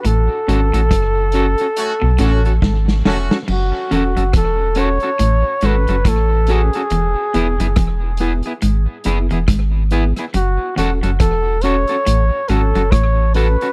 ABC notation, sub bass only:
X:1
M:4/4
L:1/16
Q:"Swing 16ths" 1/4=70
K:F#m
V:1 name="Sub bass" clef=bass
A,,, z G,,, A,,, F,,,3 z2 B,,, A,,,2 G,,,2 E,,, z | F,,, z E,,, F,,, E,,,3 z A,,, z G,,, F,,, A,,,3 z | E,,, z E,,, F,,, E,,,3 z G,,, z F,,, E,,, G,,,3 z | F,,, z E,,, F,,, E,,,3 z A,,, z G,,, F,,, A,,,3 z |]